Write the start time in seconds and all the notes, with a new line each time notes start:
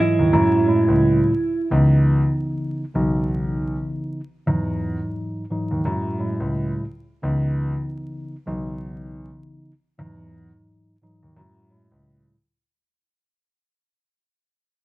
0.00 G#2 E3 F#3 E4 D#5
0.19 D#2
0.33 F#2 A2 F#3 G#3 E4
0.67 A2 F#3 G#3 E4
0.88 C#2
1.71 C#2 C#3 E3 B3 D#4
2.94 B1 C#3 E3 B3 D#4
4.46 E2 G#2 E3 F#3 D#4
5.50 G#2 E3 F#3 D#4
5.71 D#2
5.84 F#2 A2 F#3 G#3 E4
6.19 A2 F#3 G#3 E4
6.40 C#2
7.22 C#2 C#3 E3 B3 D#4
8.46 B1 C#3 E3 B3 D#4
9.98 E2 G#2 E3 F#3 D#4
11.02 G#2 E3 F#3 D#4
11.23 D#2
11.36 F#2 A2 F#3 G#3 E4
11.70 A2 F#3 G#3 E4
11.91 C#2